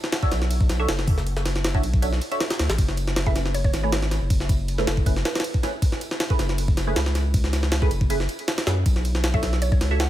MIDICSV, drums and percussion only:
0, 0, Header, 1, 2, 480
1, 0, Start_track
1, 0, Key_signature, 3, "minor"
1, 0, Tempo, 379747
1, 1598, Time_signature, 4, 2, 24, 8
1, 12760, End_track
2, 0, Start_track
2, 0, Title_t, "Drums"
2, 47, Note_on_c, 9, 38, 62
2, 157, Note_off_c, 9, 38, 0
2, 157, Note_on_c, 9, 38, 122
2, 157, Note_on_c, 9, 51, 90
2, 284, Note_off_c, 9, 38, 0
2, 284, Note_off_c, 9, 51, 0
2, 285, Note_on_c, 9, 36, 100
2, 399, Note_on_c, 9, 38, 53
2, 399, Note_on_c, 9, 51, 69
2, 412, Note_off_c, 9, 36, 0
2, 525, Note_off_c, 9, 38, 0
2, 525, Note_off_c, 9, 51, 0
2, 526, Note_on_c, 9, 38, 48
2, 639, Note_on_c, 9, 51, 90
2, 652, Note_off_c, 9, 38, 0
2, 765, Note_off_c, 9, 51, 0
2, 766, Note_on_c, 9, 36, 101
2, 878, Note_on_c, 9, 38, 56
2, 878, Note_on_c, 9, 51, 72
2, 892, Note_off_c, 9, 36, 0
2, 1005, Note_off_c, 9, 38, 0
2, 1005, Note_off_c, 9, 51, 0
2, 1119, Note_on_c, 9, 38, 127
2, 1119, Note_on_c, 9, 51, 94
2, 1246, Note_off_c, 9, 38, 0
2, 1246, Note_off_c, 9, 51, 0
2, 1248, Note_on_c, 9, 38, 57
2, 1359, Note_on_c, 9, 36, 101
2, 1360, Note_on_c, 9, 51, 80
2, 1374, Note_off_c, 9, 38, 0
2, 1485, Note_off_c, 9, 36, 0
2, 1486, Note_off_c, 9, 51, 0
2, 1487, Note_on_c, 9, 38, 41
2, 1600, Note_on_c, 9, 51, 63
2, 1613, Note_off_c, 9, 38, 0
2, 1726, Note_off_c, 9, 51, 0
2, 1726, Note_on_c, 9, 38, 53
2, 1839, Note_off_c, 9, 38, 0
2, 1839, Note_on_c, 9, 38, 60
2, 1839, Note_on_c, 9, 51, 74
2, 1966, Note_off_c, 9, 38, 0
2, 1966, Note_off_c, 9, 51, 0
2, 1967, Note_on_c, 9, 38, 55
2, 2080, Note_off_c, 9, 38, 0
2, 2080, Note_on_c, 9, 38, 119
2, 2080, Note_on_c, 9, 51, 92
2, 2206, Note_off_c, 9, 38, 0
2, 2206, Note_off_c, 9, 51, 0
2, 2207, Note_on_c, 9, 36, 93
2, 2319, Note_on_c, 9, 51, 71
2, 2333, Note_off_c, 9, 36, 0
2, 2445, Note_off_c, 9, 51, 0
2, 2446, Note_on_c, 9, 36, 101
2, 2559, Note_on_c, 9, 51, 90
2, 2573, Note_off_c, 9, 36, 0
2, 2686, Note_off_c, 9, 51, 0
2, 2688, Note_on_c, 9, 38, 38
2, 2800, Note_on_c, 9, 51, 68
2, 2814, Note_off_c, 9, 38, 0
2, 2926, Note_off_c, 9, 51, 0
2, 2927, Note_on_c, 9, 51, 47
2, 3040, Note_off_c, 9, 51, 0
2, 3040, Note_on_c, 9, 38, 111
2, 3040, Note_on_c, 9, 51, 84
2, 3166, Note_off_c, 9, 38, 0
2, 3166, Note_off_c, 9, 51, 0
2, 3166, Note_on_c, 9, 38, 108
2, 3166, Note_on_c, 9, 51, 81
2, 3280, Note_off_c, 9, 38, 0
2, 3280, Note_off_c, 9, 51, 0
2, 3280, Note_on_c, 9, 38, 105
2, 3280, Note_on_c, 9, 51, 82
2, 3406, Note_off_c, 9, 38, 0
2, 3406, Note_off_c, 9, 51, 0
2, 3407, Note_on_c, 9, 38, 108
2, 3407, Note_on_c, 9, 51, 84
2, 3519, Note_off_c, 9, 51, 0
2, 3519, Note_on_c, 9, 36, 109
2, 3519, Note_on_c, 9, 51, 91
2, 3534, Note_off_c, 9, 38, 0
2, 3646, Note_off_c, 9, 36, 0
2, 3646, Note_off_c, 9, 51, 0
2, 3647, Note_on_c, 9, 38, 45
2, 3759, Note_on_c, 9, 51, 75
2, 3773, Note_off_c, 9, 38, 0
2, 3885, Note_off_c, 9, 51, 0
2, 3887, Note_on_c, 9, 38, 60
2, 3999, Note_off_c, 9, 38, 0
2, 3999, Note_on_c, 9, 38, 122
2, 3999, Note_on_c, 9, 51, 90
2, 4125, Note_off_c, 9, 38, 0
2, 4125, Note_off_c, 9, 51, 0
2, 4127, Note_on_c, 9, 36, 97
2, 4241, Note_on_c, 9, 38, 54
2, 4241, Note_on_c, 9, 51, 67
2, 4253, Note_off_c, 9, 36, 0
2, 4368, Note_off_c, 9, 38, 0
2, 4368, Note_off_c, 9, 51, 0
2, 4368, Note_on_c, 9, 38, 49
2, 4481, Note_on_c, 9, 51, 88
2, 4494, Note_off_c, 9, 38, 0
2, 4607, Note_off_c, 9, 51, 0
2, 4607, Note_on_c, 9, 36, 100
2, 4721, Note_on_c, 9, 38, 54
2, 4721, Note_on_c, 9, 51, 72
2, 4733, Note_off_c, 9, 36, 0
2, 4848, Note_off_c, 9, 38, 0
2, 4848, Note_off_c, 9, 51, 0
2, 4961, Note_on_c, 9, 38, 125
2, 4961, Note_on_c, 9, 51, 93
2, 5087, Note_off_c, 9, 38, 0
2, 5087, Note_off_c, 9, 51, 0
2, 5087, Note_on_c, 9, 38, 58
2, 5199, Note_off_c, 9, 38, 0
2, 5199, Note_on_c, 9, 38, 51
2, 5199, Note_on_c, 9, 51, 69
2, 5326, Note_off_c, 9, 38, 0
2, 5326, Note_off_c, 9, 51, 0
2, 5439, Note_on_c, 9, 36, 115
2, 5440, Note_on_c, 9, 51, 90
2, 5565, Note_off_c, 9, 36, 0
2, 5566, Note_off_c, 9, 51, 0
2, 5567, Note_on_c, 9, 38, 42
2, 5679, Note_on_c, 9, 36, 106
2, 5680, Note_on_c, 9, 51, 85
2, 5693, Note_off_c, 9, 38, 0
2, 5805, Note_off_c, 9, 36, 0
2, 5806, Note_off_c, 9, 51, 0
2, 5920, Note_on_c, 9, 51, 62
2, 6046, Note_off_c, 9, 51, 0
2, 6047, Note_on_c, 9, 38, 51
2, 6160, Note_off_c, 9, 38, 0
2, 6160, Note_on_c, 9, 38, 101
2, 6160, Note_on_c, 9, 51, 83
2, 6286, Note_off_c, 9, 38, 0
2, 6286, Note_off_c, 9, 51, 0
2, 6286, Note_on_c, 9, 36, 92
2, 6399, Note_off_c, 9, 36, 0
2, 6399, Note_on_c, 9, 36, 105
2, 6400, Note_on_c, 9, 51, 78
2, 6525, Note_off_c, 9, 36, 0
2, 6527, Note_off_c, 9, 51, 0
2, 6528, Note_on_c, 9, 38, 41
2, 6640, Note_off_c, 9, 38, 0
2, 6640, Note_on_c, 9, 38, 106
2, 6640, Note_on_c, 9, 51, 82
2, 6766, Note_off_c, 9, 38, 0
2, 6766, Note_off_c, 9, 51, 0
2, 6768, Note_on_c, 9, 38, 97
2, 6768, Note_on_c, 9, 51, 72
2, 6824, Note_off_c, 9, 38, 0
2, 6824, Note_off_c, 9, 51, 0
2, 6824, Note_on_c, 9, 38, 94
2, 6824, Note_on_c, 9, 51, 72
2, 6880, Note_off_c, 9, 51, 0
2, 6880, Note_on_c, 9, 51, 84
2, 6950, Note_off_c, 9, 38, 0
2, 7006, Note_off_c, 9, 51, 0
2, 7006, Note_on_c, 9, 36, 88
2, 7121, Note_on_c, 9, 38, 52
2, 7121, Note_on_c, 9, 51, 60
2, 7133, Note_off_c, 9, 36, 0
2, 7247, Note_off_c, 9, 38, 0
2, 7247, Note_off_c, 9, 51, 0
2, 7359, Note_on_c, 9, 36, 116
2, 7359, Note_on_c, 9, 51, 93
2, 7485, Note_off_c, 9, 36, 0
2, 7486, Note_off_c, 9, 51, 0
2, 7487, Note_on_c, 9, 38, 45
2, 7600, Note_on_c, 9, 51, 72
2, 7613, Note_off_c, 9, 38, 0
2, 7726, Note_off_c, 9, 51, 0
2, 7726, Note_on_c, 9, 38, 61
2, 7838, Note_off_c, 9, 38, 0
2, 7838, Note_on_c, 9, 38, 116
2, 7838, Note_on_c, 9, 51, 94
2, 7965, Note_off_c, 9, 38, 0
2, 7965, Note_off_c, 9, 51, 0
2, 7965, Note_on_c, 9, 36, 98
2, 8079, Note_on_c, 9, 38, 56
2, 8079, Note_on_c, 9, 51, 67
2, 8092, Note_off_c, 9, 36, 0
2, 8205, Note_off_c, 9, 38, 0
2, 8205, Note_off_c, 9, 51, 0
2, 8206, Note_on_c, 9, 38, 50
2, 8320, Note_on_c, 9, 51, 91
2, 8333, Note_off_c, 9, 38, 0
2, 8446, Note_off_c, 9, 51, 0
2, 8446, Note_on_c, 9, 36, 102
2, 8560, Note_on_c, 9, 38, 58
2, 8560, Note_on_c, 9, 51, 71
2, 8572, Note_off_c, 9, 36, 0
2, 8686, Note_off_c, 9, 38, 0
2, 8686, Note_off_c, 9, 51, 0
2, 8800, Note_on_c, 9, 38, 121
2, 8800, Note_on_c, 9, 51, 91
2, 8926, Note_off_c, 9, 38, 0
2, 8926, Note_off_c, 9, 51, 0
2, 8927, Note_on_c, 9, 38, 58
2, 9039, Note_off_c, 9, 38, 0
2, 9039, Note_on_c, 9, 38, 51
2, 9039, Note_on_c, 9, 51, 69
2, 9165, Note_off_c, 9, 38, 0
2, 9165, Note_off_c, 9, 51, 0
2, 9278, Note_on_c, 9, 36, 111
2, 9278, Note_on_c, 9, 51, 89
2, 9404, Note_off_c, 9, 36, 0
2, 9404, Note_off_c, 9, 51, 0
2, 9404, Note_on_c, 9, 38, 41
2, 9518, Note_off_c, 9, 38, 0
2, 9518, Note_on_c, 9, 38, 59
2, 9518, Note_on_c, 9, 51, 72
2, 9644, Note_off_c, 9, 38, 0
2, 9644, Note_on_c, 9, 38, 55
2, 9645, Note_off_c, 9, 51, 0
2, 9756, Note_off_c, 9, 38, 0
2, 9756, Note_on_c, 9, 38, 122
2, 9756, Note_on_c, 9, 51, 93
2, 9882, Note_off_c, 9, 38, 0
2, 9882, Note_off_c, 9, 51, 0
2, 9885, Note_on_c, 9, 36, 92
2, 9998, Note_on_c, 9, 51, 68
2, 10011, Note_off_c, 9, 36, 0
2, 10124, Note_off_c, 9, 51, 0
2, 10125, Note_on_c, 9, 36, 101
2, 10239, Note_on_c, 9, 51, 91
2, 10252, Note_off_c, 9, 36, 0
2, 10365, Note_off_c, 9, 51, 0
2, 10366, Note_on_c, 9, 38, 37
2, 10478, Note_on_c, 9, 51, 69
2, 10493, Note_off_c, 9, 38, 0
2, 10604, Note_off_c, 9, 51, 0
2, 10604, Note_on_c, 9, 51, 48
2, 10718, Note_off_c, 9, 51, 0
2, 10718, Note_on_c, 9, 38, 114
2, 10718, Note_on_c, 9, 51, 85
2, 10844, Note_off_c, 9, 38, 0
2, 10844, Note_off_c, 9, 51, 0
2, 10845, Note_on_c, 9, 38, 102
2, 10845, Note_on_c, 9, 51, 80
2, 10958, Note_off_c, 9, 38, 0
2, 10958, Note_off_c, 9, 51, 0
2, 10958, Note_on_c, 9, 38, 124
2, 10958, Note_on_c, 9, 51, 69
2, 11084, Note_off_c, 9, 38, 0
2, 11084, Note_off_c, 9, 51, 0
2, 11197, Note_on_c, 9, 51, 94
2, 11198, Note_on_c, 9, 36, 111
2, 11323, Note_off_c, 9, 51, 0
2, 11324, Note_off_c, 9, 36, 0
2, 11326, Note_on_c, 9, 38, 43
2, 11438, Note_on_c, 9, 51, 73
2, 11452, Note_off_c, 9, 38, 0
2, 11564, Note_off_c, 9, 51, 0
2, 11564, Note_on_c, 9, 38, 62
2, 11676, Note_off_c, 9, 38, 0
2, 11676, Note_on_c, 9, 38, 124
2, 11676, Note_on_c, 9, 51, 89
2, 11803, Note_off_c, 9, 38, 0
2, 11803, Note_off_c, 9, 51, 0
2, 11805, Note_on_c, 9, 36, 97
2, 11917, Note_on_c, 9, 38, 54
2, 11917, Note_on_c, 9, 51, 71
2, 11931, Note_off_c, 9, 36, 0
2, 12043, Note_off_c, 9, 38, 0
2, 12043, Note_off_c, 9, 51, 0
2, 12045, Note_on_c, 9, 38, 49
2, 12157, Note_on_c, 9, 51, 93
2, 12172, Note_off_c, 9, 38, 0
2, 12284, Note_off_c, 9, 51, 0
2, 12285, Note_on_c, 9, 36, 103
2, 12400, Note_on_c, 9, 38, 58
2, 12400, Note_on_c, 9, 51, 72
2, 12412, Note_off_c, 9, 36, 0
2, 12526, Note_off_c, 9, 38, 0
2, 12526, Note_off_c, 9, 51, 0
2, 12639, Note_on_c, 9, 38, 127
2, 12639, Note_on_c, 9, 51, 92
2, 12760, Note_off_c, 9, 38, 0
2, 12760, Note_off_c, 9, 51, 0
2, 12760, End_track
0, 0, End_of_file